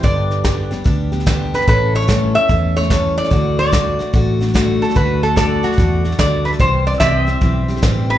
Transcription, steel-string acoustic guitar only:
X:1
M:4/4
L:1/8
Q:"Swing" 1/4=146
K:Dmix
V:1 name="Steel-string acoustic guitar"
[G,,D,G,B,DG]2 [G,,D,G,B,DG] [G,B,DG] [G,B,DG] [G,B,DG] [G,,D,G,B,DG]2 | [A,,E,A,^CA]2 [A,,E,A,CA] [A,CA] [E,A,CA] [A,CA] [A,,E,A,CA]2 | [D,A,DF]2 [D,A,DF] [A,DF] [D,A,DF] [A,DF] [D,A,DF]2 | [D,A,DF]2 [D,A,DF] [A,DF] [D,A,DF] [A,DF] [D,A,DF]2 |
[C,E,G,CG]2 [C,E,G,CG] [G,CG] [E,G,CG] [G,CG] [C,E,G,CG]2 |]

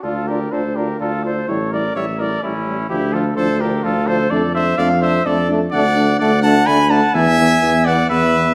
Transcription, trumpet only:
X:1
M:3/4
L:1/8
Q:1/4=127
K:Dm
V:1 name="Trumpet"
F G A G F A | A B ^c B ^C2 | E F A G F A | A c d c A z |
[K:Dlyd] d2 d f g f | e3 d B2 |]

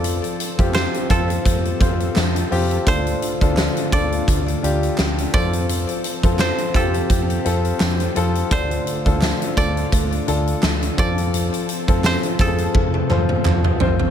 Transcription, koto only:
X:1
M:4/4
L:1/8
Q:"Swing 16ths" 1/4=85
K:F
V:1 name="Koto"
d2 c A4 z | c2 z d4 d- | d2 c A4 z | c2 z d4 d- |
d2 c A4 z |]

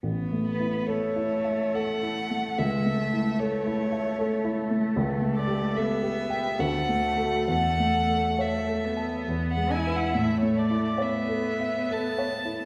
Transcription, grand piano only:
X:1
M:3/4
L:1/8
Q:1/4=71
K:A
V:1 name="Grand piano"
(3A,,, A, E (3A E e (3A E A, | (3C,, A, E (3A E e (3A E A, | (3C,, A, =G (3A G =g (3D,, A, [FA] | (3E,, A, A (3c A a (3E,, G, [EB] |
(3A,, A, E (3c A e (3A c E |]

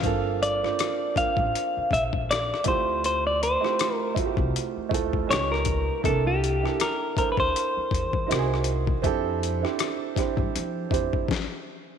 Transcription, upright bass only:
X:1
M:4/4
L:1/16
Q:"Swing 16ths" 1/4=80
K:F
V:1 name="Upright bass" clef=bass
G,,,4 z3 A,,, z2 B,,,4 D,,2- | D,,4 z3 C,, z2 D,,2 ^C,,4 | C,,4 z3 D,, z2 E,,2 C,,4 | F,,4 z3 G,, F,2 F,,2 z4 |]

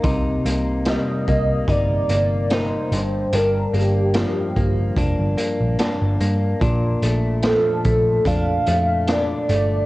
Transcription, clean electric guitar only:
X:1
M:4/4
L:1/8
Q:"Swing 16ths" 1/4=73
K:Bb
V:1 name="Clean electric guitar"
[C,E] B, G, B, E B, E G,, | [G,,D] B, F, B, D B, D B, | [B,,D] A, F, A, D A, D A, |]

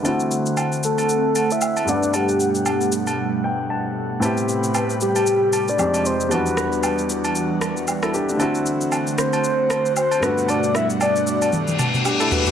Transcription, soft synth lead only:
X:1
M:4/4
L:1/16
Q:"Swing 16ths" 1/4=115
K:G
V:1 name="Soft synth lead"
z6 A4- A e3 d2 | G6 z8 z2 | z6 G4- G d3 c2 | B6 z8 z2 |
z6 c6 c2 B2 | d2 e2 d4 z8 |]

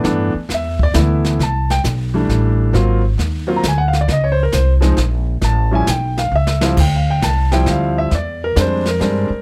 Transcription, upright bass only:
X:1
M:3/4
L:1/8
Q:"Swing" 1/4=134
K:G
V:1 name="Upright bass" clef=bass
G,, z E,,2 D,,2 | [K:C] C,,2 B,,,2 A,,,2 | _A,,,2 _E,,2 D,,2 | _D,,2 C,,2 _B,,,2 |
A,,,2 B,,,2 ^C,,2 | D,,2 C,,2 D,,2 | E,,2 F,,2 G,, z |]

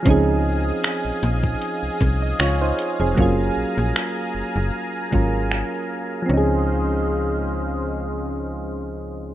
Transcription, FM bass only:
X:1
M:4/4
L:1/16
Q:"Swing 16ths" 1/4=77
K:Db
V:1 name="FM bass" clef=bass
D,,4 z B,,, B,,,2 z C,, C,,2 D,,2 z F,,, | G,,,2 B,,, B,,, z2 G,,, G,,, z2 A,,,3 z3 | D,,16 |]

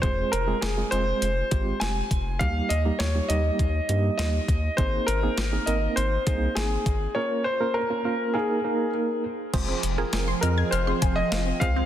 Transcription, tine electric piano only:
X:1
M:4/4
L:1/16
Q:1/4=101
K:Fm
V:1 name="Tine electric piano"
[A,CFA]2 z [A,CFA] z [A,CFA] [A,CFA]3 z [A,CFG]4 z2 | [G,B,EG]2 z [G,B,EG] z [G,B,EG] [G,B,EG]3 z [G,B,EG]4 z2 | [B,CEA]2 z [B,CEA] z [B,CEA] [B,CEB]3 z [B,CEA]4 z2 | [B,DFB]2 z [B,DFB] z [B,DFB] [B,DFB]2 [B,EAB]2 [B,EAB]4 z2 |
[CFAc]2 z [CFAB]2 z [CFAe]2 z [CFAc]3 z2 [CFAc] z |]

